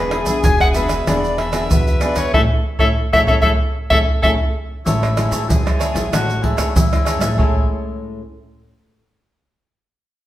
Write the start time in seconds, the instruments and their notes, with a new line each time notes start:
Already playing: upright bass E1, nylon-string guitar E3 B3 D4 G#4, cavaquinho G#4 B4 E5, tenor saxophone G#4, soprano saxophone B4
0.11 cavaquinho D4 G#4 B4 E5, pandeiro, tamborim
0.26 upright bass B1, nylon-string guitar B3 D4 G#4, cavaquinho D4 G#4 B4 E5, pandeiro, shaker
0.44 upright bass E1, nylon-string guitar B2, soprano saxophone G#5, pandeiro, shaker, surdo
0.60 cavaquinho G#4 B4 E5, soprano saxophone F#5, pandeiro, tamborim, shaker
0.74 nylon-string guitar B3 D4 G#4, cavaquinho D4 G#4 B4 E5, soprano saxophone E5, pandeiro, shaker
0.89 cavaquinho G#4 B4 E5, pandeiro, tamborim, shaker
1.07 upright bass E1, nylon-string guitar E3 B3 D4 G#4, cavaquinho D4 G#4 B4 E5, soprano saxophone D5, pandeiro, tamborim, shaker, surdo
1.24 pandeiro, shaker
1.38 cavaquinho D4 G#4 B4 E5, soprano saxophone E5, pandeiro, tamborim
1.52 nylon-string guitar B3 D4 G#4, cavaquinho D4 G#4 B4 E5, pandeiro, tamborim, shaker
1.63 tenor saxophone A#4
1.70 upright bass E2, nylon-string guitar B2, tenor saxophone B4, pandeiro, shaker, surdo
1.87 soprano saxophone E5, pandeiro, shaker
2.00 nylon-string guitar B3 D4 G#4, cavaquinho D4 G#4 B4 E5, soprano saxophone D5, pandeiro, tamborim, shaker
2.16 upright bass E2, cavaquinho G#4 B4 E5, soprano saxophone C#5, pandeiro, tamborim, shaker
2.34 upright bass A1, nylon-string guitar A3 C#4 E4, cavaquinho G#4 A4 C#5, tenor saxophone A4, soprano saxophone E5, surdo
2.79 upright bass A1, nylon-string guitar A3 C#4 E4, cavaquinho G#4 A4 C#5, tenor saxophone A4, soprano saxophone E5, surdo
3.13 upright bass A1, nylon-string guitar A3 C#4 E4, cavaquinho G#4 A4 C#5, tenor saxophone A4, soprano saxophone E5, surdo
3.27 upright bass A1, nylon-string guitar A3 C#4 E4, cavaquinho G#4 A4 C#5, tenor saxophone A4, soprano saxophone E5, surdo
3.41 upright bass A1, nylon-string guitar A3 C#4 E4, cavaquinho G#4 A4 C#5, tenor saxophone A4, soprano saxophone E5, surdo
3.90 upright bass A1, nylon-string guitar A3 C#4 E4, cavaquinho G#4 A4 C#5, tenor saxophone A4, soprano saxophone E5, surdo
4.22 upright bass A1, nylon-string guitar A3 C#4 E4, cavaquinho G#4 A4 C#5, tenor saxophone A4, soprano saxophone E5, surdo
4.86 upright bass A1, nylon-string guitar A2 G#3 C#4 E4, tenor saxophone E4, cavaquinho C#5 E5 A5, pandeiro, shaker, surdo
5.03 pandeiro, tamborim, shaker
5.16 nylon-string guitar G#3 C#4 E4, cavaquinho G#4 C#5 E5 A5, pandeiro, tamborim, shaker
5.31 upright bass A2, cavaquinho G#4 C#5 E5 A5, pandeiro, shaker
5.49 upright bass E2, nylon-string guitar E3, tenor saxophone G#4, pandeiro, shaker, surdo
5.66 nylon-string guitar G#3 C#4 E4, cavaquinho C#5 E5 A5, pandeiro, tamborim, shaker
5.79 cavaquinho G#4 C#5 E5 A5, pandeiro, tamborim, shaker
5.94 upright bass A1, nylon-string guitar G#3 C#4 E4, cavaquinho C#5 E5 A5, pandeiro, shaker
6.12 upright bass A1, nylon-string guitar A2 G#3 C#4 E4, tenor saxophone F#4, cavaquinho C#5 E5 A5, pandeiro, tamborim, shaker, surdo
6.30 pandeiro, shaker
6.42 nylon-string guitar G#3 C#4 E4, tenor saxophone E4, cavaquinho G#4 C#5 E5 A5, pandeiro, surdo
6.57 upright bass E2, cavaquinho G#4 C#5 E5 A5, pandeiro, tamborim, shaker
6.75 upright bass E2, nylon-string guitar E3, tenor saxophone E4, pandeiro, shaker, surdo
6.92 nylon-string guitar G#3 C#4 E4, pandeiro, tamborim, shaker
7.05 cavaquinho G#4 C#5 E5 A5, pandeiro, tamborim, shaker
7.20 upright bass A2, nylon-string guitar G#3 C#4 E4, cavaquinho C#5 E5 A5, pandeiro, tamborim, shaker
7.38 upright bass A1, nylon-string guitar A2 G#3 C#4 E4, tenor saxophone E4, cavaquinho G#4 C#5 E5 A5, surdo